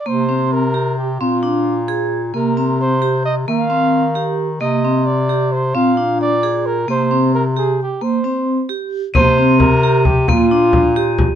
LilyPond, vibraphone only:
\new Staff \with { instrumentName = "Vibraphone" } { \time 5/8 \key c \minor \tempo 4 = 132 bes8 c'4 g'4 | c'8 d'4 aes'4 | bes8 c'4 g'4 | bes8 c'4 g'4 |
bes8 c'4 g'4 | c'8 d'4 aes'4 | bes8 c'4 g'4 | bes8 c'4 g'4 |
bes8 c'4 g'4 | bes8 d'4 g'4 | }